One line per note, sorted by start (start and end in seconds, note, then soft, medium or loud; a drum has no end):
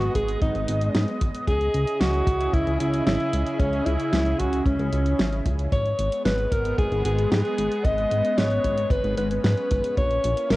0.00 1.44 G#3 medium
0.00 1.44 B3 medium
0.00 0.15 F#4 loud
0.00 7.81 D#5 medium
0.00 closed hi-hat soft
0.15 0.36 G#1 medium
0.15 0.40 G#4 medium
0.15 kick medium
0.15 closed hi-hat loud
0.28 closed hi-hat medium
0.41 0.52 G#1 medium
0.41 1.17 D#4 medium
0.41 kick loud
0.41 closed hi-hat medium
0.55 0.65 G#1 loud
0.55 closed hi-hat soft
0.68 0.89 G#1 medium
0.68 closed hi-hat loud
0.81 closed hi-hat medium
0.94 1.05 G#2 loud
0.94 snare loud
0.94 closed hi-hat medium
1.08 closed hi-hat soft
1.21 1.32 G#1 medium
1.21 kick loud
1.21 closed hi-hat loud
1.35 closed hi-hat medium
1.47 1.69 C#2 loud
1.47 5.68 C#3 medium
1.47 5.68 C#4 medium
1.47 5.68 E4 medium
1.47 2.02 G#4 loud
1.47 5.68 G#4 medium
1.47 kick loud
1.47 closed hi-hat medium
1.61 closed hi-hat soft
1.74 1.85 C#2 medium
1.74 closed hi-hat medium
1.87 closed hi-hat medium
2.00 2.22 C#2 medium
2.00 2.55 F#4 loud
2.00 snare loud
2.00 closed hi-hat medium
2.14 closed hi-hat soft
2.27 2.48 C#2 medium
2.27 kick loud
2.27 closed hi-hat medium
2.41 closed hi-hat medium
2.53 2.64 C#2 medium
2.53 2.79 E4 loud
2.53 kick loud
2.53 closed hi-hat medium
2.67 2.78 C#2 loud
2.67 closed hi-hat soft
2.80 3.02 C#2 medium
2.80 3.05 E4 loud
2.80 closed hi-hat loud
2.94 closed hi-hat medium
3.06 3.18 G#1 medium
3.06 3.61 E4 loud
3.06 snare loud
3.06 closed hi-hat medium
3.20 closed hi-hat soft
3.33 3.44 C#2 medium
3.33 closed hi-hat medium
3.47 closed hi-hat medium
3.59 3.81 C#2 loud
3.59 3.87 C#4 loud
3.59 kick loud
3.59 closed hi-hat medium
3.73 closed hi-hat soft
3.86 3.97 C#2 medium
3.86 4.41 E4 loud
3.86 closed hi-hat medium
4.00 closed hi-hat soft
4.13 4.34 C#2 medium
4.13 snare loud
4.13 closed hi-hat soft
4.26 closed hi-hat soft
4.39 4.61 C#2 medium
4.39 4.65 F#4 loud
4.39 kick medium
4.39 closed hi-hat medium
4.53 closed hi-hat soft
4.66 4.77 C#2 medium
4.66 5.42 C#4 medium
4.66 kick loud
4.66 closed hi-hat medium
4.79 4.90 C#2 loud
4.79 closed hi-hat soft
4.93 5.14 C#2 medium
4.93 closed hi-hat loud
5.06 closed hi-hat medium
5.19 5.41 G#1 medium
5.19 snare loud
5.19 closed hi-hat soft
5.33 closed hi-hat soft
5.46 5.67 C#2 medium
5.46 kick loud
5.46 closed hi-hat medium
5.59 closed hi-hat medium
5.72 5.94 G#1 medium
5.72 9.93 G#3 medium
5.72 9.93 B3 medium
5.72 6.22 C#5 loud
5.72 kick loud
5.72 closed hi-hat soft
5.86 closed hi-hat soft
5.99 6.10 G#1 medium
5.99 closed hi-hat medium
6.12 closed hi-hat medium
6.25 6.47 G#1 medium
6.25 6.54 B4 loud
6.25 snare loud
6.25 closed hi-hat soft
6.39 closed hi-hat soft
6.52 6.73 G#1 medium
6.52 6.78 A#4 loud
6.52 kick loud
6.52 closed hi-hat medium
6.65 closed hi-hat soft
6.78 6.89 G#1 medium
6.78 7.03 G#4 loud
6.78 kick loud
6.78 closed hi-hat soft
6.92 7.03 G#1 loud
6.92 closed hi-hat soft
7.05 7.26 G#1 medium
7.05 7.30 G#4 medium
7.05 closed hi-hat medium
7.19 closed hi-hat soft
7.32 7.42 G#2 loud
7.32 7.86 G#4 loud
7.32 snare loud
7.32 closed hi-hat soft
7.45 closed hi-hat soft
7.58 7.69 G#1 medium
7.58 closed hi-hat medium
7.71 closed hi-hat soft
7.84 8.06 G#1 loud
7.84 10.56 C#4 loud
7.84 8.40 D#5 loud
7.84 kick loud
7.84 closed hi-hat medium
7.98 closed hi-hat soft
8.11 8.22 G#1 medium
8.11 closed hi-hat medium
8.25 closed hi-hat soft
8.38 8.59 G#1 medium
8.38 8.93 C#5 loud
8.38 snare loud
8.38 closed hi-hat soft
8.51 closed hi-hat soft
8.64 8.86 G#1 medium
8.64 kick medium
8.64 closed hi-hat medium
8.78 closed hi-hat soft
8.90 9.01 G#1 medium
8.90 9.17 B4 loud
8.90 kick loud
8.90 closed hi-hat soft
9.04 9.15 G#1 loud
9.04 closed hi-hat soft
9.18 9.39 G#1 medium
9.18 9.30 B4 loud
9.18 closed hi-hat medium
9.31 closed hi-hat soft
9.44 9.55 G#2 loud
9.44 9.94 B4 loud
9.44 snare loud
9.44 closed hi-hat soft
9.57 closed hi-hat soft
9.71 9.82 G#1 medium
9.71 kick loud
9.71 closed hi-hat medium
9.84 closed hi-hat soft
9.97 10.18 A#1 loud
9.97 10.56 A#3 medium
9.97 10.56 E4 loud
9.97 10.52 C#5 loud
9.97 kick loud
9.97 closed hi-hat medium
10.10 closed hi-hat soft
10.24 10.34 A#1 medium
10.24 closed hi-hat medium
10.37 closed hi-hat soft
10.50 10.56 A#1 medium
10.50 10.56 A#4 loud
10.50 snare loud
10.50 closed hi-hat medium